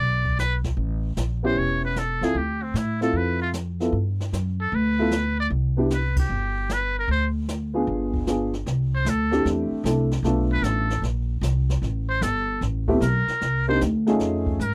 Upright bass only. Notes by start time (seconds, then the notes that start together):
0.00 B1
0.77 A1
1.17 A#1
1.56 E1
2.21 C#2
2.35 D2
2.74 A2
3.13 F2
3.92 G2
4.32 F#2
4.72 D2
5.50 C2
6.29 G1
7.08 D2
7.87 G1
8.66 C2
9.05 D2
9.45 E2
9.71 muted upright bass stroke
9.84 C2
10.23 B1
10.62 A1
11.02 A#1
11.41 C2
11.82 A1
12.21 G1
12.61 A1
13.01 B1
13.28 muted upright bass stroke
13.42 C2
13.81 D2
14.20 F2
14.59 G#2